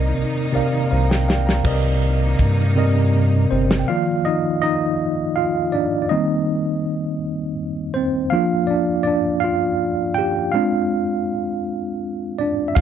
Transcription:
Already playing: analog synth bass C2, tine electric piano C3 C4 A#4 D5 D#5, string section D#3 A#3 D#4
0.19 analog synth bass C2
0.52 analog synth bass C2, tine electric piano C3 C4 A#4 D5 F5
0.91 analog synth bass C2, tine electric piano C5 F5 A#5
1.10 tine electric piano G5, snare
1.28 tine electric piano D5 F5 G5, snare
1.47 tine electric piano F5 A#5, snare
1.64 analog synth bass C2, tine electric piano C3 C4 A#4 D5 D#5, string section D#3 A#3 D#4, kick, crash
2.02 closed hi-hat
2.39 analog synth bass G2, kick, closed hi-hat
2.75 tine electric piano C3 C4 A#4 D5 D#5
3.51 analog synth bass G1, tine electric piano C4 C5
3.71 snare
3.79 tine electric piano G5
3.88 tine electric piano D#3 F3 A#3 F4 D5 F5
4.25 tine electric piano D#4 D#5
4.62 tine electric piano D#4 D#5
5.36 tine electric piano F4 F5
5.72 tine electric piano D4 D5
6.02 tine electric piano D5
6.09 tine electric piano D#3 G3 A#3 C4 D#4 D#5
7.94 tine electric piano C4 C5
8.30 tine electric piano F3 A#3 D4 F4 F5
8.67 tine electric piano D4 D5
9.03 tine electric piano D5
9.07 tine electric piano D4
9.40 tine electric piano F5
9.44 tine electric piano F4
10.14 tine electric piano G4 G5
10.52 tine electric piano G#3 C4 D4 F4 F5
12.39 tine electric piano D4 D5
12.68 tine electric piano E5
12.75 analog synth bass C2, string section D#3 A#3 C4 F4, tine electric piano F3 A#3 D#4 F4 D5 F5, kick, closed hi-hat

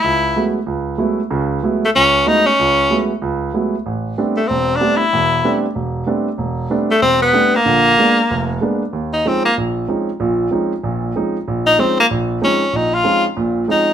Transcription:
Already playing: tenor saxophone E4
0.04 grand piano C#2
0.36 grand piano F#3 G#3 A3 B3 E4
0.66 grand piano C#2
0.98 grand piano F#3 G#3 A3 B3 E4
1.30 grand piano C#2 C#3
1.63 grand piano F#3 G#3 A3 B3 E4
1.85 tenor saxophone A3
1.95 grand piano C#2, tenor saxophone C#4
2.26 grand piano F#3 G#3 A3 B3 E4, tenor saxophone D#4
2.46 tenor saxophone C#4
2.59 grand piano C#2
2.90 grand piano F#3 G#3 A3 B3 E4
3.22 grand piano C#2
3.54 grand piano F#3 G#3 A3 B3 E4
3.86 grand piano A1
4.18 grand piano G3 A3 B3 C4 D4
4.37 tenor saxophone A3
4.48 grand piano E1, tenor saxophone C4
4.76 tenor saxophone D4
4.81 grand piano G3 A3 B3 C4 D4
4.96 tenor saxophone E4
5.13 grand piano E1 E2
5.45 grand piano G3 A3 B3 C4 D4
5.75 grand piano E1
6.06 grand piano G3 A3 B3 C4 D4
6.38 grand piano E1
6.70 grand piano G3 A3 B3 C4 D4
6.91 tenor saxophone A3
7.02 grand piano E1, tenor saxophone C4
7.22 tenor saxophone B3
7.33 grand piano G3 A3 B3 C4 D4
7.56 tenor saxophone A#3
7.65 grand piano A#1 D3
7.98 grand piano G#3 A#3 B3 D4
8.31 grand piano F1
8.61 grand piano G#3 A#3 B3 D4
8.93 grand piano D#2
9.13 tenor saxophone D#4
9.25 grand piano F3 G#3 C4 C#4 D#4, tenor saxophone C4
9.45 tenor saxophone A#3
9.58 grand piano A#1
9.88 grand piano F3 G#3 C4 C#4 D#4
10.20 grand piano A#1 A#2
10.51 grand piano F3 G#3 C4 C#4 D#4
10.83 grand piano A#1 A#2
11.16 grand piano F3 G#3 C4 C#4 D#4
11.48 grand piano A#1
11.66 tenor saxophone D#4
11.78 grand piano F3 G#3 C4 C#4 D#4, tenor saxophone C4
12.00 tenor saxophone A#3
12.11 grand piano A#1
12.41 grand piano F3 G#3 C4 C#4 D#4, tenor saxophone C#4
12.73 grand piano A#1, tenor saxophone D#4
12.94 tenor saxophone F4
13.04 grand piano F3 G#3 C4 C#4 D#4
13.37 grand piano A#1 A#2
13.68 grand piano F3 G#3 C4 C#4 D#4, tenor saxophone D#4

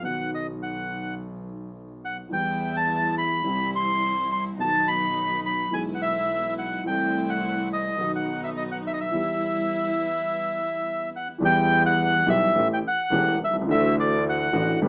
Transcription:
0.01 grand piano B1 B2 D#3 F#3 B3 F#4, double bass B1, bandoneon F#5
0.35 bandoneon D#5
0.63 bandoneon F#5
2.05 bandoneon F#5
2.29 double bass E2, grand piano E2 E3 G3 B3, string section G3 B3 E4
2.33 grand piano G4, bandoneon G5
2.77 bandoneon A5
3.18 bandoneon B5
3.43 grand piano C2 C3 E3 G3 C4 G4, double bass C2, string section G3 C4 E4
3.76 bandoneon C6
4.32 bandoneon C6
4.57 double bass B1, grand piano B1 B2 D#3 F#3 B3 F#4, string section F#3 B3 D#4, bandoneon A5
4.88 bandoneon B5
5.46 bandoneon B5
5.71 double bass B1, grand piano B1 B2 E3 G#3 B3 G#4, string section G#3 B3 E4, bandoneon G#5
5.95 bandoneon F#5
6.02 bandoneon E5
6.59 bandoneon F#5
6.84 double bass C2, grand piano C2 C3 E3 A3 C4, string section A3 C4 E4, bandoneon G5
6.88 grand piano A4
7.30 bandoneon F#5
7.73 bandoneon D#5
7.97 grand piano B1 B2 D#3 F#3 B3 F#4, double bass B1, string section F#3 B3 D#4
8.16 bandoneon F#5
8.44 bandoneon E5
8.57 bandoneon D#5
8.71 bandoneon F#5
8.87 bandoneon E5
8.94 bandoneon D#5
9.01 bandoneon E5
9.11 grand piano E2 E3 G3 B3 G4, string section G3 B3 E4
11.16 bandoneon F#5
11.38 double bass E2, grand piano E2 E3 G3 B3
11.42 grand piano G4, bandoneon G5
11.86 bandoneon F#5
12.26 double bass B1, grand piano B1 B2 E3 G3 B3 G4, bandoneon E5
12.54 double bass A1, grand piano A1 A2 E3 A3 C#4 G4
12.74 bandoneon G5
12.88 bandoneon F#5
13.11 double bass E1, grand piano E1 E2 E3 A3 C#4 G4
13.40 double bass C2
13.44 grand piano B1, bandoneon E5
13.53 grand piano C2
13.61 grand piano C#2
13.66 double bass D2, grand piano D2 D3 E3 A3 D4
13.71 grand piano F#4, bandoneon E5
14.00 bandoneon D5
14.29 bandoneon F#5
14.53 grand piano A1 A2 E3 A3 D4 F#4, double bass A1
14.81 double bass G1, grand piano G1 G2 D3 G3 B3 G4

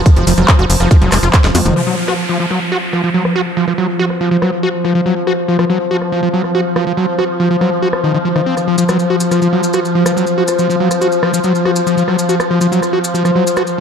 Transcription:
Already playing: synth drone F3, ambient pad F4 C5 A#5
0.06 kick, closed hi-hat, maracas
0.16 analog synth bass F1, acid bass F3, closed hi-hat
0.27 analog synth bass F1, acid bass F3, open hi-hat, ride, maracas
0.37 analog synth bass F1, acid bass F#3, cross-stick, closed hi-hat, maracas
0.48 kick, clap, closed hi-hat, maracas
0.59 analog synth bass F1, acid bass F#4, closed hi-hat
0.70 analog synth bass F1, open hi-hat, ride, maracas
0.80 analog synth bass F1, acid bass F3, cross-stick, closed hi-hat, maracas
0.91 acid bass F3, kick, closed hi-hat, maracas
1.02 analog synth bass F1, acid bass F#3, closed hi-hat
1.12 analog synth bass F1, acid bass G#3, cross-stick, clap, open hi-hat, ride, maracas
1.23 analog synth bass F1, acid bass F4, closed hi-hat, maracas
1.33 kick, clap, closed hi-hat, maracas
1.44 analog synth bass F1, acid bass G#3, snare, closed hi-hat
1.55 analog synth bass F2, acid bass F#4, open hi-hat, mid tom, ride, maracas
1.65 analog synth bass F1, acid bass D#3, closed hi-hat, mid tom, maracas
1.76 synth drone F3, acid bass F3, ambient pad F4, cross-stick, downlifter
1.87 acid bass F#3
2.01 ambient pad F5
2.08 acid bass F#4, cross-stick
2.29 acid bass F3
2.40 acid bass F3
2.50 acid bass F#3, cross-stick
2.59 ambient pad C5
2.72 acid bass F#4
2.93 acid bass F3, cross-stick
3.04 acid bass F3
3.14 acid bass F#3
3.25 cross-stick
3.36 acid bass F#4
3.57 acid bass F3
3.67 acid bass F3, cross-stick
3.78 acid bass F#3
3.99 acid bass F#4
4.10 cross-stick
4.21 acid bass F3
4.31 acid bass F3, closed hi-hat
4.42 acid bass F#3, cross-stick
4.63 acid bass F#4
4.74 closed hi-hat
4.85 acid bass F3, cross-stick
4.95 acid bass F3
5.06 acid bass F#3
5.16 closed hi-hat
5.27 acid bass F#4, cross-stick
5.48 acid bass F3
5.59 acid bass F3, cross-stick
5.70 acid bass F#3
5.80 closed hi-hat
5.91 acid bass F#4
6.02 cross-stick
6.12 acid bass F3
6.23 acid bass F3
6.33 acid bass F#3
6.44 cross-stick
6.55 acid bass F#4
6.76 acid bass F3, cross-stick
6.87 acid bass F3, closed hi-hat
6.97 acid bass F#3
7.19 acid bass F#4, cross-stick
7.29 closed hi-hat
7.40 acid bass F3
7.50 acid bass F3
7.61 acid bass F#3, cross-stick
7.72 closed hi-hat
7.82 acid bass F#4
7.93 cross-stick, closed hi-hat
8.04 acid bass D#3
8.14 acid bass D#3
8.25 acid bass F3
8.36 acid bass D#3, cross-stick
8.46 acid bass C4
8.57 cross-stick, closed hi-hat, maracas
8.68 acid bass F3
8.78 acid bass F3, maracas
8.89 acid bass F#3, cross-stick, maracas
8.99 closed hi-hat, maracas
9.10 acid bass F#4
9.20 maracas
9.31 acid bass F3, cross-stick, maracas
9.42 acid bass F3, closed hi-hat, maracas
9.53 acid bass F#3
9.63 closed hi-hat, maracas
9.73 acid bass F#4, cross-stick, maracas
9.85 closed hi-hat, maracas
9.95 acid bass F3
10.06 acid bass F3, cross-stick, maracas
10.16 acid bass F#3, maracas
10.27 closed hi-hat, maracas
10.38 acid bass F#4
10.48 cross-stick, closed hi-hat, maracas
10.59 acid bass F3, closed hi-hat, maracas
10.70 acid bass F3, closed hi-hat, maracas
10.80 acid bass F#3
10.91 cross-stick, closed hi-hat, maracas
11.02 acid bass F#4, maracas
11.12 closed hi-hat, maracas
11.23 acid bass F3, cross-stick
11.34 acid bass F3, maracas
11.44 acid bass F#3, closed hi-hat, maracas
11.55 closed hi-hat, maracas
11.65 acid bass F#4, cross-stick
11.76 closed hi-hat, maracas
11.87 acid bass F3, closed hi-hat, maracas
11.97 acid bass F3, closed hi-hat, maracas
12.08 acid bass F#3, cross-stick, closed hi-hat
12.19 closed hi-hat, maracas
12.29 acid bass F#4, maracas
12.40 cross-stick, closed hi-hat, maracas
12.50 acid bass F3, closed hi-hat
12.61 acid bass F3, closed hi-hat, maracas
12.72 acid bass F#3, closed hi-hat, maracas
12.82 cross-stick, closed hi-hat, maracas
12.93 acid bass F#4, closed hi-hat
13.04 closed hi-hat, maracas
13.14 acid bass F3, closed hi-hat, maracas
13.25 acid bass F3, cross-stick, closed hi-hat, maracas
13.36 acid bass F#3, closed hi-hat
13.46 closed hi-hat, maracas
13.57 acid bass F#4, cross-stick, maracas
13.67 closed hi-hat, maracas

